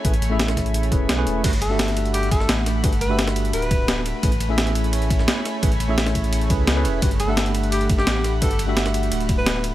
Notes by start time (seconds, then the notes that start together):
Already playing: A3 C#5 G#5 B5
0.04 A1 A3 C#4 E4 G#4 B4, kick, closed hi-hat
0.14 closed hi-hat
0.22 closed hi-hat
0.30 A3 C#4 E4 G#4 E5
0.39 snare, closed hi-hat
0.48 snare, closed hi-hat
0.57 kick, snare, closed hi-hat
0.66 closed hi-hat
0.74 closed hi-hat
0.83 closed hi-hat
0.91 E1 A3 C#4 E4 G#4 B4, kick, closed hi-hat
1.09 B1, snare, closed hi-hat
1.18 A3 C#4 E4 G#4 B4
1.27 E1, closed hi-hat
1.43 G1 A3 D4 F#4 G4 B4 F#5 B5, kick, closed hi-hat, crash, ride
1.53 closed hi-hat
1.62 A4, closed hi-hat, ride
1.69 A3 D4 F#4 G4 E5
1.79 snare, closed hi-hat, ride
1.88 closed hi-hat
1.97 closed hi-hat, ride
2.05 closed hi-hat
2.14 G4, closed hi-hat, ride
2.23 closed hi-hat
2.31 A4, kick, closed hi-hat, ride
2.40 snare
2.49 A1, snare, closed hi-hat, ride
2.66 snare, closed hi-hat, ride
2.83 G1 A3 D4 F#4 G4 B4, kick, closed hi-hat, ride
2.93 closed hi-hat
3.01 B4, closed hi-hat, ride
3.08 A3 D4 F#4 G4 E5
3.19 snare, closed hi-hat, ride
3.27 snare, closed hi-hat
3.36 closed hi-hat, ride
3.45 closed hi-hat
3.53 D1 B4, closed hi-hat, ride
3.62 closed hi-hat
3.71 kick, closed hi-hat, ride
3.88 snare, closed hi-hat, ride
4.06 closed hi-hat, ride
4.23 A1 A3 C#4 E4 G#4 B4 C#5 G#5, kick, closed hi-hat, ride
4.32 closed hi-hat
4.40 closed hi-hat, ride
4.48 A3 C#4 E4 G#4 E5
4.58 snare, closed hi-hat, ride
4.67 closed hi-hat
4.75 closed hi-hat, ride
4.84 closed hi-hat
4.93 closed hi-hat, ride
5.02 closed hi-hat
5.10 kick, closed hi-hat, ride
5.19 snare
5.28 snare, closed hi-hat, ride
5.45 snare, closed hi-hat, ride
5.62 A1 A3 C#4 E4 G#4 B4, kick, closed hi-hat, ride
5.72 closed hi-hat
5.80 closed hi-hat, ride
5.88 A3 C#4 E4 G#4 E5
5.98 snare, closed hi-hat, ride
6.06 snare, closed hi-hat
6.15 kick, closed hi-hat, ride
6.24 closed hi-hat
6.33 closed hi-hat, ride
6.41 closed hi-hat
6.49 C#2 A3 C#4 E4 G#4 B4, kick, closed hi-hat, ride
6.67 snare, closed hi-hat, ride
6.76 A3 C#4 E4 G#4 B4
6.85 E1, closed hi-hat, ride
7.02 G1 A3 D4 F#4 G4 B4 F#5, kick, closed hi-hat, ride
7.11 closed hi-hat
7.20 A4, closed hi-hat, ride
7.27 A3 D4 G4 E5 F#5
7.37 snare, closed hi-hat, ride
7.46 closed hi-hat
7.55 closed hi-hat, ride
7.63 closed hi-hat
7.72 G4, closed hi-hat, ride
7.81 closed hi-hat
7.89 kick, closed hi-hat, ride
7.98 G4, snare
8.07 A1, snare, closed hi-hat, ride
8.24 snare, closed hi-hat, ride
8.41 G1 A3 D4 F#4 G4 A4 B4, kick, closed hi-hat, ride
8.51 closed hi-hat
8.59 closed hi-hat, ride
8.67 A3 D4 F#4 G4 E5
8.77 snare, closed hi-hat, ride
8.86 snare, closed hi-hat
8.94 closed hi-hat, ride
9.03 closed hi-hat
9.11 D1, closed hi-hat, ride
9.20 closed hi-hat
9.29 kick, closed hi-hat, ride
9.38 B4
9.46 snare, closed hi-hat, ride
9.64 closed hi-hat, ride